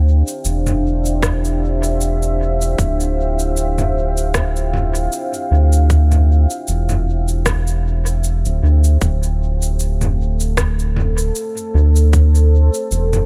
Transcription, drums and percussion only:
0.28 cabasa soft
0.45 cabasa medium
0.67 mid tom medium
0.67 cabasa soft
1.06 cabasa soft
1.23 kick loud
1.23 cross-stick medium
1.23 cabasa medium
1.45 cabasa soft
1.84 cabasa soft
2.01 cabasa soft
2.23 cabasa soft
2.62 cabasa soft
2.78 kick loud
2.78 cabasa soft
3.01 cabasa soft
3.39 cabasa soft
3.57 cabasa medium
3.78 mid tom medium
3.78 cabasa soft
4.18 cabasa soft
4.34 kick loud
4.34 cross-stick medium
4.34 cabasa soft
4.56 cabasa soft
4.74 mid tom medium
4.95 cabasa soft
5.12 cabasa soft
5.34 cabasa soft
5.73 cabasa soft
5.90 kick loud
5.90 cabasa soft
6.12 mid tom medium
6.12 cabasa soft
6.50 cabasa soft
6.68 cabasa soft
6.89 mid tom medium
6.89 cabasa soft
7.28 cabasa soft
7.46 kick loud
7.46 cross-stick medium
7.46 cabasa soft
7.67 cabasa soft
8.06 cabasa soft
8.24 cabasa soft
8.45 cabasa soft
8.84 cabasa soft
9.01 kick loud
9.01 cabasa soft
9.23 cabasa soft
9.62 cabasa soft
9.80 cabasa soft
10.01 mid tom medium
10.01 cabasa soft
10.40 cabasa soft
10.57 kick loud
10.57 cross-stick medium
10.57 cabasa soft
10.79 cabasa soft
10.96 mid tom medium
11.18 cabasa soft
11.35 cabasa soft
11.57 cabasa soft
11.96 cabasa soft
12.13 kick loud
12.13 cabasa soft
12.35 cabasa soft
12.74 cabasa soft
12.92 cabasa soft
13.13 mid tom medium
13.13 cabasa soft

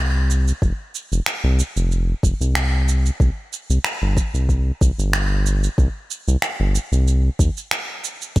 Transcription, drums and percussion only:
0.31 shaker medium
0.48 shaker soft
0.62 kick loud
0.62 shaker soft
0.95 shaker medium
1.13 shaker soft
1.26 finger snap medium
1.26 shaker soft
1.60 shaker medium
1.77 shaker soft
1.92 shaker soft
2.23 kick loud
2.23 shaker medium
2.41 shaker soft
2.55 finger snap loud
2.55 shaker soft
2.89 shaker medium
3.06 shaker soft
3.20 kick loud
3.20 shaker soft
3.53 shaker medium
3.70 shaker soft
3.84 finger snap medium
3.84 shaker soft
4.17 kick loud
4.17 shaker medium
4.35 shaker soft
4.49 kick medium
4.49 shaker soft
4.81 kick loud
4.81 shaker medium
4.99 shaker soft
5.13 finger snap medium
5.13 shaker soft
5.46 shaker medium
5.64 shaker soft
5.78 kick loud
5.78 shaker soft
6.11 shaker medium
6.28 shaker soft
6.42 finger snap medium
6.42 shaker soft
6.75 shaker medium
6.93 shaker soft
7.08 shaker soft
7.39 kick loud
7.39 shaker medium
7.57 shaker soft
7.71 finger snap medium
7.71 shaker soft
8.04 shaker medium
8.22 shaker soft
8.36 kick loud
8.36 open hi-hat soft
8.36 shaker soft

